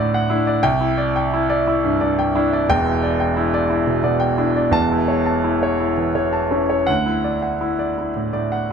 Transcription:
Already playing: D2 A2 E4 D5 F#5
0.14 F#5
0.30 D4 E4
0.47 D5
0.63 C2 G5
0.81 E4
0.98 D5
1.16 G5
1.34 E4
1.50 D5
1.68 E4
1.84 G2
2.01 G2 D5
2.19 G5
2.35 D4 E4
2.53 D5
2.69 E1 E2 G5
2.85 E4
3.03 D5
3.20 G5
3.37 E4
3.54 D5
3.70 E4
3.87 B2
4.03 B2 D5
4.20 G5
4.38 D4 E4
4.56 D5
4.71 E1 E2 A5
4.92 E4
5.08 C#5
5.26 A5
5.44 E4
5.63 C#5
5.80 E4
5.97 E3
6.15 E3 C#5
6.33 A5
6.51 C#4 E4
6.70 C#5
6.87 D2 F#5
7.06 E4
7.24 D5
7.42 F#5
7.61 E4
7.79 D5
7.98 E4
8.16 A2
8.33 A2 D5
8.52 F#5

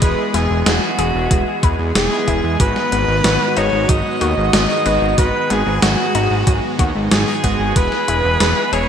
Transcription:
Already playing: E3 G#3 B3 G#4
0.02 E1 G#3 B3 E4 G#4 B4, kick, closed hi-hat
0.34 E1 E4 G#4, snare, closed hi-hat
0.50 E1
0.66 E1 G#3 F#4, snare, closed hi-hat
0.99 E1 G#3 B3 E4 G#4, closed hi-hat
1.15 E1
1.31 E1 G#3, kick, closed hi-hat
1.63 E2 B4, kick, closed hi-hat
1.79 E2
1.95 E1 G#3 G#4, snare, closed hi-hat
2.12 G#3 B3 E4 G#4
2.28 E1 E4, kick, closed hi-hat
2.44 E2
2.60 G#1 G#2 D#3 F#3 G#3 B3 D#4 F#4 B4, kick, closed hi-hat
2.76 snare
2.92 G#1 B3, closed hi-hat
3.08 G#1
3.24 G#1 F#3, snare, closed hi-hat
3.57 G#1 G#2 G#3 B3 D#4 F#4 C#5, closed hi-hat
3.73 G#1
3.89 G#1 F#3 D#5, kick, closed hi-hat
4.21 D#2 F#4, closed hi-hat
4.38 G#1
4.53 G#1 F#3 D#5, snare, closed hi-hat
4.70 G#2 G#3 B3 D#4 G#4
4.86 G#1 G#2 G#3 B3 D#4 F#4, closed hi-hat
5.02 G#1
5.18 G#1 G#2 F#3 G#3 B3 D#4 F#4 G#4 B4, kick, closed hi-hat
5.50 G#1 B3 G#4, snare, closed hi-hat
5.67 G#1
5.82 G#1 F#3 F#4, snare, closed hi-hat
6.15 G#1 G#2 G#3 B3 D#4 F#4, closed hi-hat
6.31 G#1
6.47 G#1 F#3, kick, closed hi-hat
6.79 D#2 F#4, kick, closed hi-hat
6.95 G#1
7.11 G#1 F#3 G#4, snare, closed hi-hat
7.28 G#2 G#3 B3 D#4 G#4
7.44 G#1 G#3 B3 D#4 F#4, kick, closed hi-hat
7.60 G#1
7.76 E1 E3 G#3 B3 E4 G#4 B4, kick, closed hi-hat
7.92 snare
8.08 E1 E4, closed hi-hat
8.24 E1
8.40 E1 G#3, snare, closed hi-hat
8.73 E1 G#3 B3 E4 G#4 C#5, closed hi-hat

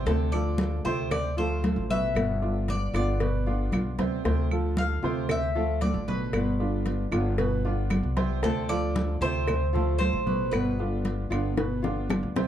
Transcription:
0.06 D2 C3 D3 A3 C4 F4 A4 C5, cowbell, high conga
0.32 F3 F4 A4 D5, high conga, claves
0.58 cowbell, high conga
0.85 D2 C3 A3 C4 F4 C5, high conga
1.11 D5, muted nylon-string guitar stroke, cowbell, high conga, low conga, claves
1.37 F3 A3 C4 F4 A4 C5, high conga
1.62 D3 A3 C4 F4, cowbell, high conga
1.76 A1
1.90 B2 B4 E5, high conga
2.15 G1 G3 B3 F4, cowbell, high conga, claves
2.42 D3 D4 F4, high conga
2.68 D5, cowbell, high conga
2.94 G1 D3 B3 D4 F4 D5, cowbell, high conga, claves
3.20 B2 B3 B4, muted nylon-string guitar stroke, cowbell, high conga
3.46 D3 B3 D4 F4, high conga
3.71 B1 G3 B3 F4, cowbell, high conga, claves
3.98 D2 C3 C4 C5, cowbell, high conga
4.23 D2 C3 D3 A3 C4 F4 C5, cowbell, high conga
4.51 F3 F4 A4, high conga, claves
4.77 F5, cowbell, high conga
5.02 D2 C3 A3 C4 F4 C5, high conga
5.29 E5, muted nylon-string guitar stroke, cowbell, high conga, low conga, claves
5.55 F3 A3 C4 F4 A4, high conga
5.81 D3 A3 C4 F4 D5, cowbell, high conga
5.94 A1
6.08 B2 B4, high conga
6.33 G1 G3 B3 F4, cowbell, high conga, claves
6.60 D3 D4 F4, high conga
6.86 cowbell, high conga
7.11 G1 D3 B3 D4 F4, cowbell, high conga, claves
7.38 B2 B3 B4, muted nylon-string guitar stroke, cowbell, high conga
7.65 D3 B3 D4 F4, high conga
7.90 G3 B3 F4, cowbell, high conga, claves
8.03 C2
8.17 C3 C4 C5, cowbell, high conga
8.42 D2 C3 D3 A3 C4 F4 A4 C5, cowbell, high conga
8.69 F3 F4 A4 D5, high conga, claves
8.96 cowbell, high conga
9.21 D2 C3 A3 C4 F4 C5, high conga
9.48 muted nylon-string guitar stroke, cowbell, high conga, low conga, claves
9.73 F3 A3 C4 F4 A4, high conga, low conga
9.98 D3 A3 C4 F4 C5, cowbell, high conga
10.13 A1
10.26 B2 B4, high conga
10.51 G1 G3 B3 F4 B4, cowbell, high conga, claves
10.79 D3 D4 F4, high conga
11.05 cowbell, high conga
11.30 G1 D3 B3 D4 F4, cowbell, high conga, claves
11.57 B2 B3 B4, muted nylon-string guitar stroke, cowbell, high bongo, high conga
11.82 D3 B3 D4 F4, low bongo, high conga
12.09 G3 B3 F4, cowbell, low bongo, high conga, claves
12.23 D2
12.36 C3 C4 C5, cowbell, low bongo, high conga

